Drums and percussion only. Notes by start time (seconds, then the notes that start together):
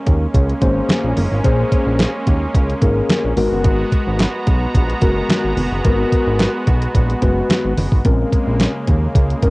0.06 kick, closed hi-hat, muted conga
0.34 kick, closed hi-hat
0.49 closed hi-hat
0.61 kick, closed hi-hat, muted conga
0.89 snare, closed hi-hat, high conga
1.17 open hi-hat, high conga
1.32 high conga
1.44 kick, closed hi-hat, muted conga
1.72 kick, closed hi-hat, muted conga
1.99 snare, closed hi-hat, high conga
2.27 kick, closed hi-hat, muted conga
2.54 kick, closed hi-hat
2.70 closed hi-hat
2.81 kick, closed hi-hat, muted conga
3.09 snare, closed hi-hat, high conga
3.37 open hi-hat, high conga
3.52 high conga
3.64 kick, closed hi-hat, muted conga
3.92 kick, closed hi-hat, muted conga
4.19 snare, closed hi-hat, high conga
4.47 kick, closed hi-hat, muted conga
4.75 kick, closed hi-hat
4.90 closed hi-hat
5.01 kick, closed hi-hat, muted conga
5.29 snare, closed hi-hat, high conga
5.57 open hi-hat, high conga
5.72 high conga
5.85 kick, closed hi-hat, muted conga
6.12 kick, closed hi-hat
6.39 snare, closed hi-hat, high conga
6.67 kick, closed hi-hat, muted conga
6.82 closed hi-hat
6.95 kick, closed hi-hat
7.10 closed hi-hat
7.22 kick, closed hi-hat, muted conga
7.49 snare, closed hi-hat, high conga
7.77 open hi-hat, high conga
7.92 kick
8.05 kick, closed hi-hat, muted conga
8.32 kick, closed hi-hat, muted conga
8.60 snare, closed hi-hat, high conga
8.87 kick, closed hi-hat, muted conga
9.15 kick, closed hi-hat
9.30 closed hi-hat
9.42 kick, closed hi-hat, muted conga